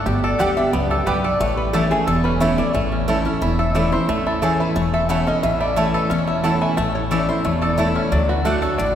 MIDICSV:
0, 0, Header, 1, 6, 480
1, 0, Start_track
1, 0, Key_signature, 3, "major"
1, 0, Tempo, 335570
1, 89, Time_signature, 4, 2, 24, 8
1, 12802, End_track
2, 0, Start_track
2, 0, Title_t, "Resonator guitar played with a steel bar"
2, 0, Program_c, 0, 25
2, 335, Note_on_c, 0, 74, 85
2, 560, Note_off_c, 0, 74, 0
2, 561, Note_on_c, 0, 78, 97
2, 806, Note_off_c, 0, 78, 0
2, 812, Note_on_c, 0, 76, 112
2, 1036, Note_off_c, 0, 76, 0
2, 1041, Note_on_c, 0, 74, 83
2, 1282, Note_on_c, 0, 67, 54
2, 1289, Note_off_c, 0, 74, 0
2, 1514, Note_off_c, 0, 67, 0
2, 1521, Note_on_c, 0, 71, 90
2, 1769, Note_off_c, 0, 71, 0
2, 1777, Note_on_c, 0, 74, 108
2, 2000, Note_off_c, 0, 74, 0
2, 2005, Note_on_c, 0, 73, 86
2, 2245, Note_off_c, 0, 73, 0
2, 2250, Note_on_c, 0, 71, 92
2, 2478, Note_off_c, 0, 71, 0
2, 2478, Note_on_c, 0, 69, 83
2, 2720, Note_off_c, 0, 69, 0
2, 2726, Note_on_c, 0, 68, 105
2, 2951, Note_off_c, 0, 68, 0
2, 2957, Note_on_c, 0, 69, 84
2, 3202, Note_on_c, 0, 71, 100
2, 3207, Note_off_c, 0, 69, 0
2, 3434, Note_off_c, 0, 71, 0
2, 3444, Note_on_c, 0, 73, 85
2, 3682, Note_off_c, 0, 73, 0
2, 3688, Note_on_c, 0, 74, 116
2, 3905, Note_off_c, 0, 74, 0
2, 3911, Note_on_c, 0, 73, 85
2, 4367, Note_off_c, 0, 73, 0
2, 5134, Note_on_c, 0, 76, 99
2, 5370, Note_off_c, 0, 76, 0
2, 5370, Note_on_c, 0, 74, 83
2, 5610, Note_on_c, 0, 72, 101
2, 5614, Note_off_c, 0, 74, 0
2, 5845, Note_off_c, 0, 72, 0
2, 5845, Note_on_c, 0, 73, 92
2, 6092, Note_off_c, 0, 73, 0
2, 6099, Note_on_c, 0, 69, 82
2, 6324, Note_off_c, 0, 69, 0
2, 6338, Note_on_c, 0, 68, 76
2, 6579, Note_off_c, 0, 68, 0
2, 6586, Note_on_c, 0, 71, 98
2, 6808, Note_off_c, 0, 71, 0
2, 6815, Note_on_c, 0, 73, 96
2, 7053, Note_off_c, 0, 73, 0
2, 7059, Note_on_c, 0, 76, 100
2, 7284, Note_off_c, 0, 76, 0
2, 7291, Note_on_c, 0, 78, 97
2, 7536, Note_off_c, 0, 78, 0
2, 7551, Note_on_c, 0, 75, 97
2, 7770, Note_off_c, 0, 75, 0
2, 7784, Note_on_c, 0, 76, 105
2, 8016, Note_off_c, 0, 76, 0
2, 8022, Note_on_c, 0, 74, 88
2, 8246, Note_off_c, 0, 74, 0
2, 8252, Note_on_c, 0, 73, 92
2, 8495, Note_off_c, 0, 73, 0
2, 8500, Note_on_c, 0, 71, 103
2, 8718, Note_off_c, 0, 71, 0
2, 8724, Note_on_c, 0, 73, 85
2, 8972, Note_off_c, 0, 73, 0
2, 8988, Note_on_c, 0, 76, 93
2, 9209, Note_off_c, 0, 76, 0
2, 9216, Note_on_c, 0, 78, 82
2, 9455, Note_off_c, 0, 78, 0
2, 9460, Note_on_c, 0, 80, 91
2, 9685, Note_off_c, 0, 80, 0
2, 9691, Note_on_c, 0, 81, 101
2, 9935, Note_off_c, 0, 81, 0
2, 9942, Note_on_c, 0, 73, 102
2, 10080, Note_off_c, 0, 73, 0
2, 10169, Note_on_c, 0, 74, 82
2, 10414, Note_off_c, 0, 74, 0
2, 10424, Note_on_c, 0, 72, 92
2, 10646, Note_off_c, 0, 72, 0
2, 10655, Note_on_c, 0, 73, 92
2, 10888, Note_off_c, 0, 73, 0
2, 10893, Note_on_c, 0, 74, 104
2, 11120, Note_off_c, 0, 74, 0
2, 11132, Note_on_c, 0, 76, 91
2, 11373, Note_on_c, 0, 73, 101
2, 11374, Note_off_c, 0, 76, 0
2, 11599, Note_off_c, 0, 73, 0
2, 11613, Note_on_c, 0, 74, 94
2, 11854, Note_off_c, 0, 74, 0
2, 11858, Note_on_c, 0, 71, 85
2, 12074, Note_off_c, 0, 71, 0
2, 12080, Note_on_c, 0, 69, 76
2, 12326, Note_off_c, 0, 69, 0
2, 12326, Note_on_c, 0, 73, 102
2, 12554, Note_off_c, 0, 73, 0
2, 12561, Note_on_c, 0, 74, 91
2, 12802, Note_off_c, 0, 74, 0
2, 12802, End_track
3, 0, Start_track
3, 0, Title_t, "Mandolin"
3, 0, Program_c, 1, 25
3, 552, Note_on_c, 1, 59, 97
3, 559, Note_on_c, 1, 67, 97
3, 564, Note_on_c, 1, 74, 99
3, 568, Note_on_c, 1, 79, 113
3, 695, Note_off_c, 1, 59, 0
3, 699, Note_off_c, 1, 67, 0
3, 701, Note_off_c, 1, 74, 0
3, 704, Note_off_c, 1, 79, 0
3, 1517, Note_on_c, 1, 59, 90
3, 1522, Note_on_c, 1, 67, 92
3, 1528, Note_on_c, 1, 74, 109
3, 1532, Note_on_c, 1, 79, 106
3, 1658, Note_off_c, 1, 59, 0
3, 1661, Note_off_c, 1, 67, 0
3, 1664, Note_off_c, 1, 74, 0
3, 1666, Note_off_c, 1, 79, 0
3, 2479, Note_on_c, 1, 57, 98
3, 2484, Note_on_c, 1, 64, 102
3, 2489, Note_on_c, 1, 73, 109
3, 2493, Note_on_c, 1, 81, 107
3, 2619, Note_off_c, 1, 57, 0
3, 2622, Note_off_c, 1, 64, 0
3, 2625, Note_off_c, 1, 73, 0
3, 2626, Note_off_c, 1, 81, 0
3, 3437, Note_on_c, 1, 57, 92
3, 3443, Note_on_c, 1, 64, 89
3, 3447, Note_on_c, 1, 73, 95
3, 3452, Note_on_c, 1, 81, 100
3, 3579, Note_off_c, 1, 57, 0
3, 3582, Note_off_c, 1, 64, 0
3, 3584, Note_off_c, 1, 73, 0
3, 3586, Note_off_c, 1, 81, 0
3, 4402, Note_on_c, 1, 57, 87
3, 4409, Note_on_c, 1, 64, 96
3, 4413, Note_on_c, 1, 73, 94
3, 4418, Note_on_c, 1, 81, 107
3, 4542, Note_off_c, 1, 57, 0
3, 4545, Note_off_c, 1, 64, 0
3, 4547, Note_off_c, 1, 73, 0
3, 4550, Note_off_c, 1, 81, 0
3, 5360, Note_on_c, 1, 57, 91
3, 5366, Note_on_c, 1, 64, 93
3, 5371, Note_on_c, 1, 73, 86
3, 5374, Note_on_c, 1, 81, 84
3, 5501, Note_off_c, 1, 57, 0
3, 5504, Note_off_c, 1, 64, 0
3, 5507, Note_off_c, 1, 73, 0
3, 5508, Note_off_c, 1, 81, 0
3, 6319, Note_on_c, 1, 57, 87
3, 6324, Note_on_c, 1, 64, 91
3, 6329, Note_on_c, 1, 73, 98
3, 6336, Note_on_c, 1, 81, 106
3, 6461, Note_off_c, 1, 57, 0
3, 6463, Note_off_c, 1, 64, 0
3, 6466, Note_off_c, 1, 73, 0
3, 6469, Note_off_c, 1, 81, 0
3, 7281, Note_on_c, 1, 57, 101
3, 7286, Note_on_c, 1, 64, 99
3, 7294, Note_on_c, 1, 73, 93
3, 7298, Note_on_c, 1, 81, 102
3, 7422, Note_off_c, 1, 57, 0
3, 7425, Note_off_c, 1, 64, 0
3, 7428, Note_off_c, 1, 73, 0
3, 7430, Note_off_c, 1, 81, 0
3, 8245, Note_on_c, 1, 57, 97
3, 8250, Note_on_c, 1, 64, 96
3, 8256, Note_on_c, 1, 73, 115
3, 8259, Note_on_c, 1, 81, 100
3, 8384, Note_off_c, 1, 57, 0
3, 8387, Note_off_c, 1, 64, 0
3, 8390, Note_off_c, 1, 73, 0
3, 8391, Note_off_c, 1, 81, 0
3, 9203, Note_on_c, 1, 57, 91
3, 9210, Note_on_c, 1, 64, 96
3, 9214, Note_on_c, 1, 73, 106
3, 9219, Note_on_c, 1, 81, 94
3, 9343, Note_off_c, 1, 57, 0
3, 9347, Note_off_c, 1, 64, 0
3, 9348, Note_off_c, 1, 73, 0
3, 9351, Note_off_c, 1, 81, 0
3, 10167, Note_on_c, 1, 57, 87
3, 10172, Note_on_c, 1, 64, 102
3, 10177, Note_on_c, 1, 73, 102
3, 10180, Note_on_c, 1, 81, 106
3, 10304, Note_off_c, 1, 57, 0
3, 10307, Note_off_c, 1, 64, 0
3, 10310, Note_off_c, 1, 73, 0
3, 10311, Note_off_c, 1, 81, 0
3, 11129, Note_on_c, 1, 57, 91
3, 11135, Note_on_c, 1, 64, 92
3, 11141, Note_on_c, 1, 73, 94
3, 11144, Note_on_c, 1, 81, 107
3, 11264, Note_off_c, 1, 57, 0
3, 11267, Note_off_c, 1, 64, 0
3, 11271, Note_off_c, 1, 73, 0
3, 11272, Note_off_c, 1, 81, 0
3, 12084, Note_on_c, 1, 57, 96
3, 12090, Note_on_c, 1, 66, 103
3, 12093, Note_on_c, 1, 74, 109
3, 12098, Note_on_c, 1, 78, 110
3, 12221, Note_off_c, 1, 57, 0
3, 12224, Note_off_c, 1, 66, 0
3, 12225, Note_off_c, 1, 74, 0
3, 12228, Note_off_c, 1, 78, 0
3, 12802, End_track
4, 0, Start_track
4, 0, Title_t, "Five-string banjo"
4, 0, Program_c, 2, 105
4, 84, Note_on_c, 2, 67, 64
4, 341, Note_on_c, 2, 69, 62
4, 553, Note_off_c, 2, 67, 0
4, 570, Note_on_c, 2, 67, 65
4, 820, Note_on_c, 2, 62, 58
4, 1004, Note_off_c, 2, 69, 0
4, 1047, Note_on_c, 2, 59, 61
4, 1251, Note_off_c, 2, 67, 0
4, 1300, Note_on_c, 2, 69, 61
4, 1484, Note_off_c, 2, 62, 0
4, 1513, Note_off_c, 2, 59, 0
4, 1530, Note_on_c, 2, 59, 66
4, 1763, Note_off_c, 2, 69, 0
4, 1780, Note_on_c, 2, 69, 62
4, 2005, Note_off_c, 2, 59, 0
4, 2010, Note_off_c, 2, 69, 0
4, 2010, Note_on_c, 2, 57, 79
4, 2494, Note_on_c, 2, 69, 61
4, 2691, Note_off_c, 2, 57, 0
4, 2742, Note_on_c, 2, 57, 75
4, 2949, Note_off_c, 2, 69, 0
4, 2966, Note_on_c, 2, 69, 59
4, 3218, Note_on_c, 2, 61, 60
4, 3406, Note_off_c, 2, 57, 0
4, 3443, Note_on_c, 2, 64, 60
4, 3650, Note_off_c, 2, 69, 0
4, 3696, Note_on_c, 2, 57, 61
4, 3884, Note_off_c, 2, 61, 0
4, 3911, Note_off_c, 2, 57, 0
4, 3927, Note_off_c, 2, 64, 0
4, 3928, Note_on_c, 2, 57, 74
4, 4179, Note_on_c, 2, 61, 55
4, 4413, Note_on_c, 2, 64, 59
4, 4653, Note_off_c, 2, 61, 0
4, 4659, Note_on_c, 2, 61, 58
4, 4889, Note_off_c, 2, 64, 0
4, 4894, Note_on_c, 2, 64, 62
4, 5136, Note_on_c, 2, 69, 55
4, 5361, Note_off_c, 2, 57, 0
4, 5367, Note_on_c, 2, 57, 66
4, 5611, Note_off_c, 2, 64, 0
4, 5616, Note_on_c, 2, 64, 62
4, 5845, Note_off_c, 2, 57, 0
4, 5850, Note_on_c, 2, 57, 74
4, 6097, Note_off_c, 2, 64, 0
4, 6102, Note_on_c, 2, 64, 60
4, 6322, Note_off_c, 2, 69, 0
4, 6327, Note_on_c, 2, 69, 56
4, 6576, Note_off_c, 2, 64, 0
4, 6582, Note_on_c, 2, 64, 59
4, 6662, Note_off_c, 2, 61, 0
4, 6803, Note_off_c, 2, 57, 0
4, 6808, Note_on_c, 2, 57, 61
4, 7058, Note_off_c, 2, 69, 0
4, 7063, Note_on_c, 2, 69, 58
4, 7285, Note_off_c, 2, 64, 0
4, 7290, Note_on_c, 2, 64, 57
4, 7542, Note_on_c, 2, 61, 59
4, 7768, Note_on_c, 2, 52, 71
4, 8012, Note_off_c, 2, 64, 0
4, 8017, Note_on_c, 2, 64, 59
4, 8239, Note_off_c, 2, 57, 0
4, 8245, Note_on_c, 2, 57, 64
4, 8495, Note_off_c, 2, 69, 0
4, 8500, Note_on_c, 2, 69, 61
4, 8717, Note_off_c, 2, 61, 0
4, 8723, Note_on_c, 2, 61, 63
4, 8971, Note_off_c, 2, 64, 0
4, 8976, Note_on_c, 2, 64, 65
4, 9202, Note_off_c, 2, 69, 0
4, 9207, Note_on_c, 2, 69, 60
4, 9409, Note_off_c, 2, 61, 0
4, 9447, Note_off_c, 2, 64, 0
4, 9464, Note_on_c, 2, 64, 59
4, 9682, Note_off_c, 2, 57, 0
4, 9688, Note_on_c, 2, 57, 83
4, 9770, Note_off_c, 2, 52, 0
4, 10127, Note_off_c, 2, 64, 0
4, 10169, Note_off_c, 2, 69, 0
4, 10175, Note_on_c, 2, 69, 65
4, 10426, Note_on_c, 2, 64, 64
4, 10649, Note_off_c, 2, 57, 0
4, 10655, Note_on_c, 2, 57, 62
4, 10898, Note_off_c, 2, 69, 0
4, 10903, Note_on_c, 2, 69, 62
4, 11087, Note_off_c, 2, 64, 0
4, 11125, Note_on_c, 2, 64, 56
4, 11383, Note_on_c, 2, 61, 57
4, 11607, Note_off_c, 2, 64, 0
4, 11611, Note_off_c, 2, 61, 0
4, 11611, Note_on_c, 2, 54, 67
4, 11860, Note_on_c, 2, 66, 58
4, 12082, Note_off_c, 2, 57, 0
4, 12087, Note_on_c, 2, 57, 63
4, 12327, Note_off_c, 2, 69, 0
4, 12333, Note_on_c, 2, 69, 58
4, 12565, Note_on_c, 2, 62, 65
4, 12766, Note_off_c, 2, 57, 0
4, 12802, Note_off_c, 2, 54, 0
4, 12802, Note_off_c, 2, 62, 0
4, 12802, Note_off_c, 2, 66, 0
4, 12802, Note_off_c, 2, 69, 0
4, 12802, End_track
5, 0, Start_track
5, 0, Title_t, "Steel-string acoustic guitar"
5, 0, Program_c, 3, 25
5, 90, Note_on_c, 3, 43, 83
5, 564, Note_on_c, 3, 50, 88
5, 571, Note_on_c, 3, 55, 104
5, 578, Note_on_c, 3, 59, 94
5, 586, Note_on_c, 3, 67, 96
5, 795, Note_off_c, 3, 67, 0
5, 807, Note_off_c, 3, 50, 0
5, 811, Note_off_c, 3, 55, 0
5, 812, Note_on_c, 3, 67, 65
5, 814, Note_off_c, 3, 59, 0
5, 833, Note_on_c, 3, 59, 49
5, 1004, Note_off_c, 3, 43, 0
5, 1037, Note_off_c, 3, 67, 0
5, 1047, Note_off_c, 3, 59, 0
5, 1049, Note_on_c, 3, 42, 92
5, 1507, Note_off_c, 3, 42, 0
5, 1528, Note_on_c, 3, 43, 85
5, 1986, Note_off_c, 3, 43, 0
5, 2010, Note_on_c, 3, 45, 93
5, 2481, Note_on_c, 3, 52, 96
5, 2488, Note_on_c, 3, 57, 99
5, 2493, Note_on_c, 3, 61, 96
5, 2501, Note_on_c, 3, 64, 93
5, 2715, Note_off_c, 3, 64, 0
5, 2726, Note_off_c, 3, 52, 0
5, 2730, Note_off_c, 3, 57, 0
5, 2732, Note_on_c, 3, 64, 69
5, 2733, Note_off_c, 3, 61, 0
5, 2756, Note_on_c, 3, 61, 51
5, 2925, Note_off_c, 3, 45, 0
5, 2957, Note_off_c, 3, 64, 0
5, 2969, Note_off_c, 3, 61, 0
5, 2969, Note_on_c, 3, 40, 97
5, 3438, Note_on_c, 3, 52, 89
5, 3448, Note_on_c, 3, 57, 94
5, 3453, Note_on_c, 3, 61, 102
5, 3459, Note_on_c, 3, 64, 108
5, 3673, Note_off_c, 3, 64, 0
5, 3686, Note_off_c, 3, 52, 0
5, 3690, Note_off_c, 3, 57, 0
5, 3691, Note_on_c, 3, 64, 63
5, 3693, Note_off_c, 3, 61, 0
5, 3708, Note_on_c, 3, 61, 55
5, 3885, Note_off_c, 3, 40, 0
5, 3917, Note_off_c, 3, 64, 0
5, 3925, Note_off_c, 3, 61, 0
5, 3926, Note_on_c, 3, 45, 83
5, 4403, Note_on_c, 3, 52, 91
5, 4406, Note_on_c, 3, 57, 86
5, 4413, Note_on_c, 3, 61, 83
5, 4421, Note_on_c, 3, 64, 89
5, 4632, Note_off_c, 3, 64, 0
5, 4648, Note_off_c, 3, 52, 0
5, 4649, Note_on_c, 3, 64, 59
5, 4650, Note_off_c, 3, 57, 0
5, 4653, Note_off_c, 3, 61, 0
5, 4671, Note_on_c, 3, 61, 51
5, 4844, Note_off_c, 3, 45, 0
5, 4876, Note_off_c, 3, 64, 0
5, 4886, Note_on_c, 3, 40, 93
5, 4887, Note_off_c, 3, 61, 0
5, 5359, Note_on_c, 3, 52, 80
5, 5367, Note_on_c, 3, 57, 84
5, 5374, Note_on_c, 3, 61, 84
5, 5378, Note_on_c, 3, 64, 91
5, 5590, Note_off_c, 3, 64, 0
5, 5606, Note_off_c, 3, 52, 0
5, 5607, Note_on_c, 3, 64, 54
5, 5611, Note_off_c, 3, 57, 0
5, 5614, Note_off_c, 3, 61, 0
5, 5630, Note_on_c, 3, 61, 51
5, 5804, Note_off_c, 3, 40, 0
5, 5836, Note_off_c, 3, 64, 0
5, 5847, Note_off_c, 3, 61, 0
5, 5847, Note_on_c, 3, 45, 88
5, 6322, Note_on_c, 3, 52, 79
5, 6331, Note_on_c, 3, 57, 91
5, 6335, Note_on_c, 3, 61, 97
5, 6344, Note_on_c, 3, 64, 88
5, 6765, Note_off_c, 3, 45, 0
5, 6785, Note_off_c, 3, 52, 0
5, 6790, Note_off_c, 3, 57, 0
5, 6792, Note_off_c, 3, 61, 0
5, 6796, Note_off_c, 3, 64, 0
5, 6806, Note_on_c, 3, 40, 95
5, 7282, Note_on_c, 3, 52, 85
5, 7290, Note_on_c, 3, 57, 85
5, 7292, Note_on_c, 3, 61, 98
5, 7298, Note_on_c, 3, 64, 93
5, 7515, Note_off_c, 3, 64, 0
5, 7528, Note_off_c, 3, 52, 0
5, 7532, Note_off_c, 3, 57, 0
5, 7532, Note_on_c, 3, 64, 55
5, 7533, Note_off_c, 3, 61, 0
5, 7554, Note_on_c, 3, 61, 54
5, 7724, Note_off_c, 3, 40, 0
5, 7759, Note_off_c, 3, 64, 0
5, 7770, Note_off_c, 3, 61, 0
5, 7771, Note_on_c, 3, 45, 91
5, 8244, Note_on_c, 3, 52, 88
5, 8252, Note_on_c, 3, 57, 93
5, 8258, Note_on_c, 3, 61, 85
5, 8263, Note_on_c, 3, 64, 93
5, 8687, Note_off_c, 3, 45, 0
5, 8706, Note_off_c, 3, 52, 0
5, 8710, Note_off_c, 3, 57, 0
5, 8713, Note_off_c, 3, 61, 0
5, 8715, Note_off_c, 3, 64, 0
5, 8739, Note_on_c, 3, 40, 90
5, 9207, Note_on_c, 3, 52, 78
5, 9215, Note_on_c, 3, 57, 86
5, 9223, Note_on_c, 3, 61, 85
5, 9228, Note_on_c, 3, 64, 89
5, 9650, Note_off_c, 3, 40, 0
5, 9667, Note_off_c, 3, 52, 0
5, 9671, Note_off_c, 3, 57, 0
5, 9675, Note_off_c, 3, 61, 0
5, 9678, Note_off_c, 3, 64, 0
5, 9696, Note_on_c, 3, 45, 92
5, 10168, Note_on_c, 3, 52, 87
5, 10179, Note_on_c, 3, 57, 90
5, 10185, Note_on_c, 3, 61, 87
5, 10189, Note_on_c, 3, 64, 89
5, 10405, Note_off_c, 3, 64, 0
5, 10411, Note_off_c, 3, 52, 0
5, 10416, Note_off_c, 3, 57, 0
5, 10419, Note_off_c, 3, 61, 0
5, 10422, Note_on_c, 3, 64, 64
5, 10437, Note_on_c, 3, 61, 49
5, 10608, Note_off_c, 3, 45, 0
5, 10642, Note_off_c, 3, 64, 0
5, 10650, Note_off_c, 3, 61, 0
5, 10650, Note_on_c, 3, 40, 89
5, 11121, Note_on_c, 3, 52, 82
5, 11130, Note_on_c, 3, 57, 84
5, 11136, Note_on_c, 3, 61, 78
5, 11143, Note_on_c, 3, 64, 96
5, 11564, Note_off_c, 3, 40, 0
5, 11582, Note_off_c, 3, 52, 0
5, 11587, Note_off_c, 3, 57, 0
5, 11590, Note_off_c, 3, 61, 0
5, 11593, Note_off_c, 3, 64, 0
5, 11615, Note_on_c, 3, 50, 88
5, 12070, Note_off_c, 3, 50, 0
5, 12088, Note_on_c, 3, 50, 91
5, 12095, Note_on_c, 3, 57, 81
5, 12103, Note_on_c, 3, 62, 83
5, 12110, Note_on_c, 3, 66, 96
5, 12326, Note_off_c, 3, 66, 0
5, 12328, Note_off_c, 3, 50, 0
5, 12332, Note_off_c, 3, 57, 0
5, 12336, Note_off_c, 3, 62, 0
5, 12343, Note_on_c, 3, 66, 58
5, 12364, Note_on_c, 3, 62, 47
5, 12560, Note_off_c, 3, 66, 0
5, 12571, Note_off_c, 3, 62, 0
5, 12578, Note_on_c, 3, 45, 93
5, 12802, Note_off_c, 3, 45, 0
5, 12802, End_track
6, 0, Start_track
6, 0, Title_t, "Upright bass"
6, 0, Program_c, 4, 32
6, 87, Note_on_c, 4, 31, 92
6, 454, Note_off_c, 4, 31, 0
6, 563, Note_on_c, 4, 38, 80
6, 974, Note_off_c, 4, 38, 0
6, 1044, Note_on_c, 4, 37, 84
6, 1455, Note_off_c, 4, 37, 0
6, 1523, Note_on_c, 4, 35, 93
6, 1934, Note_off_c, 4, 35, 0
6, 2005, Note_on_c, 4, 33, 88
6, 2739, Note_off_c, 4, 33, 0
6, 2966, Note_on_c, 4, 28, 86
6, 3700, Note_off_c, 4, 28, 0
6, 3925, Note_on_c, 4, 33, 88
6, 4660, Note_off_c, 4, 33, 0
6, 4891, Note_on_c, 4, 28, 86
6, 5624, Note_off_c, 4, 28, 0
6, 5846, Note_on_c, 4, 33, 90
6, 6581, Note_off_c, 4, 33, 0
6, 6813, Note_on_c, 4, 28, 89
6, 7545, Note_off_c, 4, 28, 0
6, 7768, Note_on_c, 4, 33, 87
6, 8502, Note_off_c, 4, 33, 0
6, 8727, Note_on_c, 4, 28, 82
6, 9461, Note_off_c, 4, 28, 0
6, 9692, Note_on_c, 4, 33, 93
6, 10423, Note_off_c, 4, 33, 0
6, 10651, Note_on_c, 4, 28, 88
6, 11382, Note_off_c, 4, 28, 0
6, 11612, Note_on_c, 4, 38, 99
6, 12341, Note_off_c, 4, 38, 0
6, 12565, Note_on_c, 4, 33, 89
6, 12802, Note_off_c, 4, 33, 0
6, 12802, End_track
0, 0, End_of_file